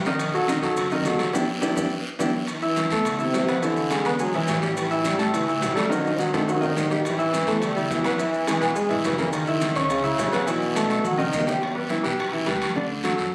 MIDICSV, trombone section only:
0, 0, Header, 1, 2, 480
1, 0, Start_track
1, 0, Key_signature, 1, "minor"
1, 0, Tempo, 285442
1, 330, Time_signature, 4, 2, 24, 8
1, 22448, End_track
2, 0, Start_track
2, 0, Title_t, "Trombone section"
2, 0, Program_c, 0, 61
2, 4195, Note_on_c, 0, 52, 81
2, 5022, Note_off_c, 0, 52, 0
2, 5081, Note_on_c, 0, 52, 61
2, 5132, Note_on_c, 0, 50, 80
2, 5137, Note_off_c, 0, 52, 0
2, 5366, Note_on_c, 0, 48, 88
2, 5373, Note_off_c, 0, 50, 0
2, 6064, Note_on_c, 0, 50, 89
2, 6090, Note_off_c, 0, 48, 0
2, 6972, Note_off_c, 0, 50, 0
2, 7046, Note_on_c, 0, 54, 91
2, 7290, Note_off_c, 0, 54, 0
2, 7302, Note_on_c, 0, 52, 102
2, 7995, Note_off_c, 0, 52, 0
2, 8015, Note_on_c, 0, 52, 87
2, 8461, Note_off_c, 0, 52, 0
2, 8487, Note_on_c, 0, 55, 95
2, 8971, Note_off_c, 0, 55, 0
2, 8977, Note_on_c, 0, 52, 88
2, 9450, Note_on_c, 0, 55, 96
2, 9456, Note_off_c, 0, 52, 0
2, 9683, Note_off_c, 0, 55, 0
2, 9703, Note_on_c, 0, 55, 91
2, 9809, Note_off_c, 0, 55, 0
2, 9928, Note_on_c, 0, 54, 92
2, 10377, Note_off_c, 0, 54, 0
2, 10391, Note_on_c, 0, 51, 96
2, 11351, Note_off_c, 0, 51, 0
2, 11371, Note_on_c, 0, 51, 95
2, 11819, Note_off_c, 0, 51, 0
2, 11846, Note_on_c, 0, 52, 100
2, 12805, Note_on_c, 0, 55, 96
2, 12810, Note_off_c, 0, 52, 0
2, 13020, Note_off_c, 0, 55, 0
2, 13040, Note_on_c, 0, 55, 98
2, 13151, Note_off_c, 0, 55, 0
2, 13297, Note_on_c, 0, 52, 95
2, 13742, Note_off_c, 0, 52, 0
2, 13772, Note_on_c, 0, 52, 102
2, 14219, Note_off_c, 0, 52, 0
2, 14245, Note_on_c, 0, 52, 106
2, 14695, Note_off_c, 0, 52, 0
2, 14720, Note_on_c, 0, 56, 99
2, 14967, Note_off_c, 0, 56, 0
2, 15206, Note_on_c, 0, 52, 96
2, 15413, Note_off_c, 0, 52, 0
2, 15433, Note_on_c, 0, 52, 98
2, 15657, Note_on_c, 0, 51, 92
2, 15665, Note_off_c, 0, 52, 0
2, 16622, Note_on_c, 0, 49, 101
2, 16634, Note_off_c, 0, 51, 0
2, 17596, Note_off_c, 0, 49, 0
2, 17600, Note_on_c, 0, 47, 88
2, 18565, Note_off_c, 0, 47, 0
2, 18592, Note_on_c, 0, 51, 90
2, 19251, Note_off_c, 0, 51, 0
2, 22448, End_track
0, 0, End_of_file